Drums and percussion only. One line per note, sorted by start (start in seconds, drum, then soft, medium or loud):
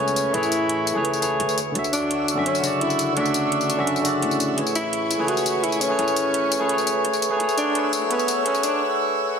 0.08 tambourine soft
0.16 closed hi-hat medium
0.16 tambourine medium
0.34 closed hi-hat medium
0.43 tambourine soft
0.52 closed hi-hat medium
0.52 tambourine medium
0.69 closed hi-hat medium
0.87 closed hi-hat medium
0.87 tambourine medium
1.05 closed hi-hat medium
1.13 tambourine soft
1.22 closed hi-hat medium
1.22 tambourine medium
1.40 closed hi-hat medium
1.49 tambourine soft
1.58 closed hi-hat medium
1.58 tambourine medium
1.75 closed hi-hat medium
1.84 tambourine soft
1.93 closed hi-hat medium
1.93 tambourine medium
2.11 closed hi-hat medium
2.28 closed hi-hat medium
2.28 tambourine medium
2.46 closed hi-hat medium
2.55 tambourine soft
2.64 closed hi-hat medium
2.64 tambourine medium
2.81 closed hi-hat medium
2.90 tambourine soft
2.99 closed hi-hat medium
2.99 tambourine medium
3.17 closed hi-hat medium
3.26 tambourine soft
3.34 closed hi-hat medium
3.34 tambourine medium
3.52 closed hi-hat medium
3.61 tambourine soft
3.70 closed hi-hat medium
3.70 tambourine medium
3.87 closed hi-hat medium
3.96 tambourine soft
4.05 closed hi-hat medium
4.05 tambourine medium
4.22 closed hi-hat medium
4.31 tambourine soft
4.40 closed hi-hat medium
4.40 tambourine medium
4.58 closed hi-hat medium
4.67 tambourine soft
4.75 closed hi-hat medium
4.75 tambourine medium
4.93 closed hi-hat medium
5.11 closed hi-hat medium
5.11 tambourine medium
5.28 closed hi-hat medium
5.37 tambourine soft
5.46 closed hi-hat medium
5.46 tambourine medium
5.64 closed hi-hat medium
5.72 tambourine soft
5.81 closed hi-hat medium
5.81 tambourine medium
5.99 closed hi-hat medium
6.08 tambourine soft
6.16 closed hi-hat medium
6.16 tambourine medium
6.34 closed hi-hat medium
6.52 closed hi-hat medium
6.52 tambourine medium
6.69 closed hi-hat medium
6.78 tambourine soft
6.87 closed hi-hat medium
6.87 tambourine medium
7.05 closed hi-hat medium
7.13 tambourine soft
7.22 closed hi-hat medium
7.22 tambourine medium
7.40 closed hi-hat medium
7.49 tambourine soft
7.58 closed hi-hat medium
7.58 tambourine medium
7.75 closed hi-hat medium
7.93 closed hi-hat medium
7.93 tambourine medium
8.11 closed hi-hat medium
8.19 tambourine soft
8.28 closed hi-hat medium
8.28 tambourine medium
8.46 closed hi-hat loud
8.55 tambourine soft
8.63 closed hi-hat medium
8.63 tambourine medium